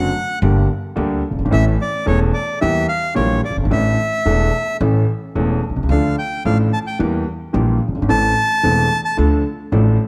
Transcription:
Already playing: upright bass F#1, grand piano F#2 D3 F#3 A3 C4 F#4, bandoneon F#5
0.42 upright bass G1, grand piano G1 G2 D3 G3 A#3 G4
0.96 grand piano D2 D3 G3 A#3 G4, upright bass D2
1.30 grand piano F#1, upright bass F#1
1.38 grand piano G1, upright bass G1
1.45 grand piano G#1, upright bass G#1
1.51 grand piano A1 A2 E3 A3 C#4 A4, upright bass A1, bandoneon E5
1.81 bandoneon D5
2.06 grand piano E1 E2 E3 A3 C#4 A4, upright bass E1, bandoneon C#5
2.34 bandoneon D5
2.61 grand piano E2 E3 G3 A#3 G4, upright bass E2, bandoneon E5
2.89 bandoneon F5
3.15 grand piano A#1 A#2 E3 G3 A#3 G4, upright bass A#1, bandoneon C#5
3.45 bandoneon D5
3.50 grand piano F#1, upright bass F#1
3.57 upright bass G1, grand piano G1
3.63 grand piano G#1, upright bass G#1
3.71 grand piano A1 A2 E3 A3 D4 A4, upright bass A1, bandoneon E5
4.25 grand piano E1 E2 E3 A3 D4 A4, upright bass E1
4.81 upright bass A1, grand piano A1 A2 E3 A3 C#4 A4
5.35 upright bass E1, grand piano E1 E2 E3 A3 C#4 A4
5.69 upright bass B1, grand piano B1
5.76 upright bass C2, grand piano C2
5.83 upright bass C#2, grand piano C#2
5.89 upright bass D2, grand piano D2 D3 F3 A3 D4 A4, bandoneon F5
6.18 bandoneon G5
6.45 upright bass A1, grand piano A1 A2 F3 A3 D4 A4, bandoneon F5
6.73 bandoneon A5
6.87 bandoneon G5
6.99 grand piano E2 E3 G3 A#3 G4, upright bass E2
7.53 grand piano A#1 A#2 E3 G3 A#3 G4, upright bass A#1
7.88 grand piano F#1, upright bass F#1
7.95 grand piano G1, upright bass G1
8.02 grand piano G#1, upright bass G#1
8.08 grand piano A1 A2 E3 A3 C4 A4, upright bass A1, bandoneon A5
8.63 upright bass E1, grand piano E1 E2 E3 A3 C4 A4
9.05 bandoneon A5
9.17 grand piano D2 D3 F3 A3 D4 A4, upright bass D2
9.72 grand piano A1 A2 F3 A3 D4 A4, upright bass A1

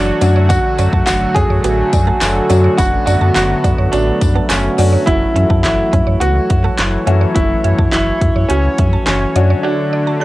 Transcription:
Already playing: sub bass F#1, analog synth pad E3 F#3 A3 F#4 C#5, grand piano D4
0.21 sub bass F#2, analog synth pad D3, grand piano F#3 A3 C#4 D4 F#4, clean electric guitar C#4, synth arpeggio sound D5, closed hi-hat, tambourine
0.36 synth arpeggio sound C#5
0.49 clean electric guitar D4, grand piano F#4, synth arpeggio sound F#4, kick, closed hi-hat, tambourine
0.78 sub bass F#2, clean electric guitar C#4, synth arpeggio sound D5, closed hi-hat, tambourine
0.93 sub bass F#2, synth arpeggio sound A5, muted clean electric guitar stroke, kick
1.06 sub bass F#1, grand piano F#4, synth arpeggio sound F#6, snare, clap, closed hi-hat, tambourine
1.34 sub bass F#2, clean electric guitar C#4, grand piano G#4, kick, closed hi-hat
1.50 sub bass F#2, synth arpeggio sound C#5
1.64 sub bass A1, clean electric guitar B3, synth arpeggio sound F#4, closed hi-hat, tambourine
1.78 muted clean electric guitar stroke
1.93 sub bass F#2, synth arpeggio sound D5, kick, closed hi-hat, tambourine
2.07 clean electric guitar A3, synth arpeggio sound A5
2.21 sub bass F#1, synth arpeggio sound F#6, snare, clap, closed hi-hat, tambourine
2.49 sub bass F#2, grand piano F#3 A3 C#4 D4 F#4, analog synth pad B3, clean electric guitar C#4, synth arpeggio sound D5, closed hi-hat, tambourine
2.64 synth arpeggio sound C#5
2.77 sub bass F#1, grand piano F#3 A3 C#4 D4 F#4, clean electric guitar E4, synth arpeggio sound F#4, kick, closed hi-hat, tambourine
3.06 sub bass F#2, clean electric guitar D4, grand piano F#4, synth arpeggio sound D5, closed hi-hat, tambourine
3.21 sub bass F#2, synth arpeggio sound A5, muted clean electric guitar stroke
3.35 sub bass F#1, grand piano F#4, synth arpeggio sound F#6, snare, clap, closed hi-hat, tambourine
3.64 sub bass F#2, clean electric guitar D4, kick, closed hi-hat, tambourine
3.78 sub bass F#2, synth arpeggio sound C#5
3.92 sub bass A1, clean electric guitar C#4, grand piano D4, synth arpeggio sound F#4, closed hi-hat, tambourine
4.07 muted clean electric guitar stroke
4.21 sub bass F#2, synth arpeggio sound D5, kick, closed hi-hat, tambourine
4.36 clean electric guitar B3, synth arpeggio sound A5
4.49 sub bass F#1, grand piano C#4, synth arpeggio sound F#6, snare, clap, closed hi-hat, tambourine
4.78 sub bass F#2, grand piano F#3 A3 C#4 D4 F#4, clean electric guitar A3, synth arpeggio sound D5, open hi-hat, tambourine
4.93 synth arpeggio sound C#5
5.06 sub bass F#1, analog synth pad E3 C#5, grand piano F#3 A3 C#4 E4 F#4, clean electric guitar E4, synth arpeggio sound F#4, kick, closed hi-hat
5.36 sub bass F#2, clean electric guitar C#4, synth arpeggio sound E5, closed hi-hat
5.50 sub bass F#2, synth arpeggio sound A5, muted clean electric guitar stroke, kick
5.63 sub bass F#1, grand piano E4, synth arpeggio sound F#6, snare, clap, closed hi-hat
5.93 sub bass F#2, clean electric guitar C#4, kick, closed hi-hat
6.07 sub bass F#2, synth arpeggio sound C#5
6.20 sub bass C#2, clean electric guitar B3, grand piano F#4, synth arpeggio sound F#4, closed hi-hat
6.36 muted clean electric guitar stroke
6.50 sub bass F#2, synth arpeggio sound E5, kick, closed hi-hat
6.64 clean electric guitar A3, synth arpeggio sound A5
6.78 sub bass F#1, synth arpeggio sound F#6, snare, clap, closed hi-hat
7.07 sub bass F#2, grand piano F#3 A3 C#4 E4 F#4, clean electric guitar C#4, synth arpeggio sound E5, closed hi-hat
7.21 synth arpeggio sound C#5
7.35 sub bass F#1, grand piano F#3 A3 C#4 E4 F#4, synth arpeggio sound F#4, kick, closed hi-hat
7.64 sub bass F#2, synth arpeggio sound E5, closed hi-hat
7.79 sub bass F#2, synth arpeggio sound A5, kick
7.92 sub bass F#1, grand piano E4, synth arpeggio sound F#6, snare, clap, closed hi-hat
8.21 sub bass F#2, kick, closed hi-hat
8.36 sub bass F#2, synth arpeggio sound C#5
8.49 sub bass C#2, grand piano C#4, synth arpeggio sound F#4, closed hi-hat
8.78 sub bass F#2, synth arpeggio sound E5, kick, closed hi-hat
8.93 synth arpeggio sound A5
9.06 sub bass F#1, grand piano C#4, synth arpeggio sound F#6, snare, clap, closed hi-hat
9.35 sub bass F#2, analog synth pad D3, grand piano F#3 A3 D4 F#4 C#5, synth arpeggio sound D5, closed hi-hat
9.50 synth arpeggio sound C#5
9.63 grand piano D4, synth arpeggio sound F#4
9.93 synth arpeggio sound D5
10.07 synth arpeggio sound A5
10.20 grand piano D4, synth arpeggio sound F#6

